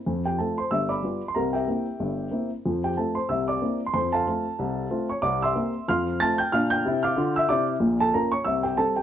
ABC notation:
X:1
M:4/4
L:1/16
Q:"Swing" 1/4=186
K:F
V:1 name="Upright piano"
z2 [Gg]2 [Aa]2 [cc']2 [ee']2 [d=bd']4- [dbd'] c' | [Bb]2 [Geg]12 z2 | z2 [Gg]2 [Aa]2 [cc']2 [ee']2 [dd']4- [dd'] c' | [cc']2 [Afa]12 [_d_d']2 |
[dd']2 [ec'e']6 [fc'f']4 [aa']2 [gg']2 | [ff']2 [gg']4 [fd'f']4 [ee']2 [dd']2 z2 | z2 [Aa]2 [Bb]2 [_d_d']2 [ee']2 [Gg]2 [Aa]2 [Gg]2 |]
V:2 name="Upright piano"
[F,,F,]4 [A,CF]4 [G,,,G,,]4 [G,=B,F]4 | [C,,C,]4 [B,CE]4 [G,,,G,,]4 [B,CE]4 | [F,,F,]4 [A,CF]4 [C,,C,]4 [B,CE]4 | [F,,F,]4 [A,CF]4 [C,,C,]4 [A,CF]4 |
[C,,C,]4 [B,CG]4 [F,,F,]4 [A,CF]4 | [B,,D]4 [C,E]4 [D,F]4 [C,E]4 | [B,,,B,,]4 [B,_DF]4 [C,,C,]4 [G,C]4 |]